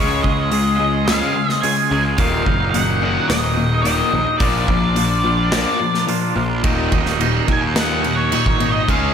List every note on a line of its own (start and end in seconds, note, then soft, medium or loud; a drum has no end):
0.00 0.21 C#2 medium
0.00 0.50 C#3 medium
0.00 0.23 G#3 medium
0.00 0.24 C#4 medium
0.00 0.25 F4 medium
0.00 0.25 G#4 loud
0.00 0.22 C#5 medium
0.23 1.20 C#2 medium
0.23 0.50 C#3 medium
0.23 0.50 G#3 medium
0.23 0.39 C#4 medium
0.23 0.38 F4 medium
0.23 0.36 G#4 medium
0.23 0.76 D#5 medium
0.23 kick medium
0.37 0.51 C#4 medium
0.37 0.52 F4 medium
0.37 0.52 G#4 medium
0.51 1.07 C#3 medium
0.51 0.77 G#3 loud
0.51 0.78 C#4 medium
0.51 0.79 F4 loud
0.51 0.79 G#4 loud
0.51 open hi-hat medium
0.77 1.05 C#3 medium
0.77 1.21 G#3 medium
0.77 0.93 C#4 medium
0.77 0.92 F4 medium
0.77 0.91 G#4 medium
0.77 1.04 D#5 medium
0.92 1.21 C#4 medium
0.92 1.21 F4 medium
0.92 1.20 G#4 medium
1.05 1.34 C#3 medium
1.05 1.34 G#3 medium
1.05 1.35 C#4 medium
1.05 1.51 F5 medium
1.05 snare loud
1.05 open hi-hat soft
1.21 1.49 C#4 medium
1.21 1.49 F4 medium
1.21 1.48 G#4 medium
1.36 1.61 C#3 medium
1.36 1.61 G#3 medium
1.49 1.62 C#4 medium
1.49 1.63 F4 medium
1.49 1.64 G#4 medium
1.49 1.61 D#5 medium
1.49 snare soft
1.62 2.05 C#3 medium
1.62 1.90 G#3 medium
1.62 1.78 C#4 medium
1.62 1.77 F4 medium
1.62 1.76 G#4 medium
1.62 2.01 G#5 medium
1.62 open hi-hat medium
1.77 1.91 C#4 medium
1.77 1.92 F4 medium
1.77 1.92 G#4 medium
1.91 2.15 C#2 medium
1.91 2.16 C#3 medium
1.91 2.18 G#3 medium
1.91 2.05 C#4 medium
1.91 2.04 F4 medium
1.91 2.03 G#4 medium
2.04 2.18 C#4 medium
2.04 2.18 F4 medium
2.04 2.17 G#4 medium
2.17 2.42 D#1 medium
2.17 2.73 D#2 medium
2.17 2.73 A#2 medium
2.17 2.44 D#3 medium
2.17 2.45 F#3 medium
2.17 2.47 A#3 loud
2.17 2.46 D#4 medium
2.17 2.70 F5 medium
2.17 kick loud
2.17 open hi-hat soft
2.46 3.18 F#1 medium
2.46 2.71 D#2 medium
2.46 2.71 A#2 medium
2.46 2.61 D#3 medium
2.46 2.60 F#3 medium
2.46 2.61 A#3 medium
2.46 2.59 D#4 medium
2.46 kick medium
2.60 2.73 D#3 medium
2.60 2.74 F#3 medium
2.60 2.75 A#3 medium
2.60 2.75 D#4 medium
2.71 3.30 D#2 medium
2.71 3.30 A#2 medium
2.71 3.00 D#3 medium
2.71 3.30 F#5 medium
2.71 open hi-hat medium
2.75 3.02 F#3 medium
2.75 3.03 A#3 medium
2.75 3.03 D#4 medium
3.01 3.28 D#2 medium
3.01 3.28 A#2 medium
3.01 3.16 D#3 medium
3.01 3.15 F#3 medium
3.01 3.15 A#3 medium
3.01 3.14 D#4 medium
3.15 3.44 D#3 medium
3.15 3.43 F#3 medium
3.15 3.44 A#3 medium
3.15 3.42 D#4 medium
3.28 4.01 D#1 medium
3.28 3.55 D#2 medium
3.28 3.55 A#2 medium
3.28 3.81 D#5 medium
3.28 snare medium
3.28 open hi-hat soft
3.43 3.73 D#3 medium
3.43 3.71 F#3 medium
3.43 3.72 A#3 medium
3.43 3.70 D#4 medium
3.57 3.83 D#2 medium
3.57 3.83 A#2 medium
3.71 3.84 D#3 medium
3.71 3.85 F#3 medium
3.71 3.86 A#3 medium
3.71 3.85 D#4 medium
3.82 4.27 D#2 medium
3.82 4.27 A#2 medium
3.82 4.01 D#3 medium
3.82 4.00 F#3 medium
3.82 4.00 A#3 medium
3.82 4.37 D#5 medium
3.82 open hi-hat medium
3.86 3.99 D#4 medium
4.00 4.13 D#3 medium
4.00 4.14 F#3 medium
4.00 4.15 A#3 medium
4.00 4.15 D#4 medium
4.13 4.25 A#1 medium
4.13 4.38 D#2 medium
4.13 4.38 A#2 medium
4.13 4.29 D#3 medium
4.13 4.29 F#3 medium
4.13 4.28 A#3 medium
4.13 4.27 D#4 medium
4.28 4.41 D#3 medium
4.28 4.41 F#3 medium
4.28 4.42 A#3 medium
4.28 4.40 D#4 medium
4.38 4.65 A#1 medium
4.38 4.95 A#2 medium
4.38 4.68 F3 medium
4.38 6.03 D5 medium
4.38 kick loud
4.38 open hi-hat soft
4.42 4.68 A#3 medium
4.42 4.69 D4 loud
4.42 4.70 F4 loud
4.68 5.64 A#1 medium
4.68 4.94 A#2 medium
4.68 4.96 F3 medium
4.68 4.84 A#3 medium
4.68 4.83 D4 medium
4.68 4.82 F4 medium
4.68 kick medium
4.83 4.96 A#3 medium
4.83 4.96 D4 medium
4.83 4.97 F4 medium
4.96 5.52 A#2 medium
4.96 5.23 F3 medium
4.96 5.24 A#3 loud
4.96 5.25 D4 medium
4.96 5.25 F4 medium
4.96 open hi-hat medium
5.24 5.50 A#2 medium
5.24 5.66 F3 medium
5.24 5.39 A#3 medium
5.24 5.38 D4 medium
5.24 5.37 F4 medium
5.38 5.67 A#3 medium
5.38 5.66 D4 medium
5.38 5.65 F4 medium
5.52 5.78 A#2 medium
5.52 5.79 F3 medium
5.52 5.79 A#3 loud
5.52 snare loud
5.52 open hi-hat medium
5.66 5.94 A#3 medium
5.66 5.94 D4 medium
5.66 5.93 F4 medium
5.80 6.06 A#2 medium
5.80 6.06 F3 medium
5.94 6.08 A#3 medium
5.94 6.08 D4 medium
5.94 6.08 F4 medium
5.94 snare soft
6.07 6.50 A#2 medium
6.07 6.34 F3 medium
6.07 6.22 A#3 medium
6.07 6.21 D4 medium
6.07 6.20 F4 medium
6.07 open hi-hat medium
6.22 6.34 A#3 medium
6.22 6.35 D4 medium
6.22 6.36 F4 medium
6.35 6.60 A#1 medium
6.35 6.61 A#2 medium
6.35 6.62 F3 medium
6.35 6.50 A#3 medium
6.35 6.49 D4 medium
6.35 6.48 F4 medium
6.49 6.63 A#3 medium
6.49 6.63 D4 medium
6.49 6.62 F4 medium
6.63 6.88 D#1 medium
6.63 7.18 D#2 medium
6.63 7.18 A#2 medium
6.63 6.91 D#3 medium
6.63 6.91 F#3 medium
6.63 6.92 A#3 medium
6.63 6.92 D#4 medium
6.63 kick loud
6.63 crash medium
6.91 7.40 D#1 medium
6.91 7.17 D#2 medium
6.91 7.17 A#2 medium
6.91 7.06 D#3 medium
6.91 7.06 F#3 medium
6.91 7.05 A#3 medium
6.91 7.04 D#4 medium
6.91 kick medium
6.91 crash soft
7.06 7.19 D#3 medium
7.06 7.19 F#3 medium
7.06 7.19 A#3 medium
7.06 7.20 D#4 medium
7.06 snare soft
7.19 7.62 D#2 medium
7.19 7.62 A#2 medium
7.19 7.34 D#3 medium
7.19 7.33 F#3 medium
7.19 7.33 A#3 medium
7.19 7.32 D#4 loud
7.19 crash medium
7.33 7.47 D#3 medium
7.33 7.48 F#3 medium
7.33 7.48 A#3 medium
7.33 7.49 D#4 medium
7.48 7.73 D#2 medium
7.48 8.33 D#2 medium
7.48 7.74 A#2 medium
7.48 7.63 D#3 medium
7.48 7.63 F#3 medium
7.48 7.62 A#3 medium
7.48 7.61 D#4 medium
7.48 7.59 G#5 loud
7.48 kick medium
7.48 crash soft
7.63 7.91 D#3 medium
7.63 7.90 F#3 medium
7.63 7.90 A#3 medium
7.63 7.89 D#4 medium
7.76 8.03 D#2 medium
7.76 8.03 A#2 medium
7.76 8.03 D#3 medium
7.76 8.13 F#5 medium
7.76 snare loud
7.76 crash medium
7.90 8.19 D#3 medium
7.90 8.19 F#3 medium
7.90 8.18 A#3 medium
7.90 8.17 D#4 medium
8.04 8.29 D#2 medium
8.04 8.30 A#2 medium
8.04 crash medium
8.16 8.33 A#3 medium
8.16 8.33 D#4 medium
8.16 8.67 C#5 medium
8.20 8.32 D#3 medium
8.20 8.32 F#3 medium
8.32 8.87 D#2 medium
8.32 8.87 A#2 medium
8.32 8.59 D#3 medium
8.32 8.60 F#3 medium
8.32 8.61 A#3 medium
8.32 8.61 D#4 medium
8.32 crash medium
8.46 8.82 G#1 medium
8.46 kick medium
8.60 8.86 D#2 medium
8.60 8.86 A#2 medium
8.60 8.76 D#3 medium
8.60 8.75 F#3 medium
8.60 8.75 A#3 medium
8.60 8.74 D#4 medium
8.60 crash medium
8.72 8.87 D#4 medium
8.72 8.90 D#5 medium
8.76 8.88 D#3 medium
8.76 8.88 F#3 medium
8.76 8.88 A#3 medium
8.88 9.12 C#2 medium
8.88 9.14 C#3 medium
8.88 9.14 G#3 medium
8.88 9.14 C#4 loud
8.88 9.14 F4 medium
8.88 9.14 G#4 medium
8.88 9.14 F5 medium
8.88 kick loud
8.88 crash medium